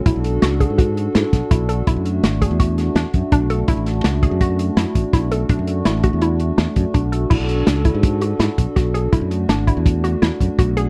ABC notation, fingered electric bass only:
X:1
M:5/4
L:1/16
Q:1/4=165
K:Bdor
V:1 name="Fingered electric bass" clef=bass
B,,, B,,,3 C,,3 G,,4- G,, G,, z B,,, z B,,,4 | B,,, F,,3 G,,,3 E,,4- E,, E,, z F,, z B,,,4 | B,,, A,,,3 C,,3 F,,4- F,, F,, z A,,, z B,,,4 | B,,, F,,3 A,,,3 E,,4- E,, E,, z F,, z B,,,4 |
B,,, B,,,3 C,,3 G,,4- G,, G,, z B,,, z B,,,4 | B,,, F,,3 G,,,3 E,,4- E,, E,, z F,, z B,,,4 |]